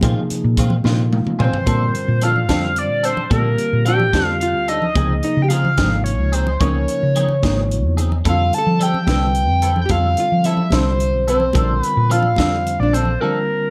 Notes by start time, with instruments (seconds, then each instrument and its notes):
0.01 fingered electric bass A#2, reed electric piano C3 F3 A#3 D#4 G#4, clean electric guitar D#3 G#3 C4 F4, kick, closed hi-hat, high conga
0.30 muted fingered electric bass stroke, closed hi-hat
0.42 fingered electric bass A#2, low conga
0.57 clean electric guitar D#3 G#3 C4 F4, kick, closed hi-hat
0.70 low conga
0.84 fingered electric bass A#2, reed electric piano C3 F3 A#3 D#4 F4, clean electric guitar D#3 G#3 C4 F4, snare, high conga, low conga
1.12 reed electric piano F5, high tom
1.25 muted fingered electric bass stroke, mid tom, low conga
1.39 fingered electric bass A#2, clean electric guitar G#3 C4 F4, analog synth lead C5, reed electric piano G#5, mid tom
1.44 hollow-body jazz guitar C4
1.53 muted fingered electric bass stroke, floor tom
1.66 fingered electric bass A#2, reed electric piano D3 G3 C4 F4 A#4, clean electric guitar F3 C4 D4 A4, kick, closed hi-hat, high conga
1.95 closed hi-hat, low conga
2.08 fingered electric bass A#2, low conga
2.21 clean electric guitar F3 C4 D4 A4, hollow-body jazz guitar F4, analog synth lead F5, closed hi-hat
2.36 low conga
2.48 fingered electric bass F2, reed electric piano D3 G3 C4 F4 C5, clean electric guitar F3 C4 D4 A4, kick, snare, closed hi-hat, high conga
2.76 hollow-body jazz guitar D4, analog synth lead D5, closed hi-hat, low conga
2.90 fingered electric bass A#2
3.03 clean electric guitar C4 D4 A4, hollow-body jazz guitar C4, analog synth lead C5, closed hi-hat
3.17 low conga
3.30 fingered electric bass A#2, reed electric piano D3 G3 C4 F4 G4, clean electric guitar F3 C4 D4 A4, hollow-body jazz guitar A#3, analog synth lead A#4, kick, closed hi-hat, high conga
3.58 closed hi-hat, low conga
3.73 fingered electric bass A#2, low conga
3.85 clean electric guitar F3 C4 D4 A4, hollow-body jazz guitar G4, analog synth lead G5, closed hi-hat
4.00 low conga
4.13 fingered electric bass F2, reed electric piano D3 G3 C4 F4 G4, clean electric guitar F3 C4 D4 A4, kick, snare, closed hi-hat, high conga
4.25 hollow-body jazz guitar F4, analog synth lead F5
4.40 hollow-body jazz guitar F4, analog synth lead F5, closed hi-hat, low conga
4.55 fingered electric bass D2
4.68 clean electric guitar C4 D4 A4, hollow-body jazz guitar D#4, analog synth lead D#5, closed hi-hat
4.82 low conga
4.96 fingered electric bass C#2, reed electric piano C3 F3 A#3 D#4 G#4, clean electric guitar F3 C4 D#4 G#4, kick, closed hi-hat, high conga
5.23 hollow-body jazz guitar D#4, analog synth lead D#5, closed hi-hat, low conga
5.37 fingered electric bass C#3, low conga
5.42 hollow-body jazz guitar G4, analog synth lead G5
5.48 clean electric guitar F3 C4 D#4 G#4, hollow-body jazz guitar F4, analog synth lead F5, closed hi-hat
5.65 low conga
5.78 fingered electric bass G#1, reed electric piano C3 F3 A#3 D#4 F4, clean electric guitar F3 C4 D#4 G#4, kick, snare, closed hi-hat, high conga
6.04 hollow-body jazz guitar C#4, analog synth lead C#5, closed hi-hat, low conga
6.19 fingered electric bass C#2
6.32 clean electric guitar C4 D#4 G#4, hollow-body jazz guitar C4, analog synth lead C5, closed hi-hat
6.47 low conga
6.60 fingered electric bass C#2, reed electric piano C#3 F3 A#3 D#4 A#4, clean electric guitar F3 C4 D#4 G#4, hollow-body jazz guitar C#4, analog synth lead C#5, kick, closed hi-hat, high conga
6.75 low conga
6.88 closed hi-hat
7.02 fingered electric bass C#3, low conga
7.16 clean electric guitar F3 C4 D#4 G#4, closed hi-hat
7.28 low conga
7.43 fingered electric bass G#1, reed electric piano C#3 F3 A#3 D#4 F4, clean electric guitar F3 C4 D#4 G#4, kick, snare, closed hi-hat, high conga
7.71 closed hi-hat
7.85 fingered electric bass E2
7.97 clean electric guitar C4 D#4 G#4, closed hi-hat
8.12 low conga
8.25 fingered electric bass F2, reed electric piano D3 G3 C4 F4 A4, clean electric guitar G3 C4 E4 A4, analog synth lead F5, kick, closed hi-hat, high conga
8.30 hollow-body jazz guitar F4
8.52 analog synth lead A5, closed hi-hat, low conga
8.58 hollow-body jazz guitar A4
8.67 fingered electric bass F3
8.79 clean electric guitar G3 C4 E4 A4, analog synth lead G5, closed hi-hat
8.85 hollow-body jazz guitar G4
8.94 low conga
9.07 fingered electric bass C2, reed electric piano D3 G3 C4 F4 B4, clean electric guitar G3 C4 E4 A4, kick, snare, closed hi-hat, high conga
9.35 closed hi-hat, low conga
9.49 fingered electric bass F2
9.62 clean electric guitar C4 E4 A4, closed hi-hat
9.76 low conga
9.81 analog synth lead G5
9.86 hollow-body jazz guitar G4, kick, closed hi-hat
9.90 fingered electric bass F2, reed electric piano D3 G3 C4 F4 A4, clean electric guitar G3 C4 E4 A4, hollow-body jazz guitar F4, analog synth lead F5, high conga
10.17 hollow-body jazz guitar F4, analog synth lead F5, closed hi-hat, low conga
10.31 fingered electric bass F3, low conga
10.44 clean electric guitar G3 C4 E4 A4, hollow-body jazz guitar E4, analog synth lead E5, closed hi-hat
10.57 low conga
10.70 fingered electric bass C2, reed electric piano D3 G3 C4 F4 C5, clean electric guitar G3 C4 E4 A4, kick, snare, closed hi-hat, high conga
10.75 hollow-body jazz guitar C4, analog synth lead C5
10.98 closed hi-hat, low conga
11.14 fingered electric bass B1
11.28 hollow-body jazz guitar C4, clean electric guitar C4 E4 A4, analog synth lead C5, closed hi-hat
11.40 low conga
11.53 fingered electric bass A#1, reed electric piano D3 G3 C4 F4 A#4, clean electric guitar F3 C4 D4 A4, kick, closed hi-hat, high conga
11.82 hollow-body jazz guitar B3, analog synth lead B4, closed hi-hat, low conga
11.95 fingered electric bass A#2, low conga
12.10 clean electric guitar F3 C4 D4 A4, hollow-body jazz guitar F4, analog synth lead F5, closed hi-hat
12.23 low conga
12.36 fingered electric bass F2, reed electric piano D3 G3 C4 F4 C5, clean electric guitar F3 C4 D4 A4, kick, snare, closed hi-hat, high conga
12.64 closed hi-hat, low conga
12.80 fingered electric bass A#1, hollow-body jazz guitar D4, analog synth lead D5
12.93 clean electric guitar C4 D4 A4, hollow-body jazz guitar C4, analog synth lead C5, closed hi-hat
13.05 low conga
13.20 reed electric piano D3 G3 C4 F4 A#4, clean electric guitar F3 C4 D4 A4, hollow-body jazz guitar A#3, analog synth lead A#4